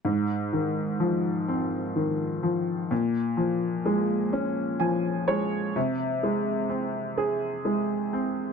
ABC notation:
X:1
M:6/8
L:1/8
Q:3/8=42
K:Ab
V:1 name="Upright piano" clef=bass
A,, E, F, C E, F, | B,, F, A, D [F,a] [A,d] | C, A, C A A, C |]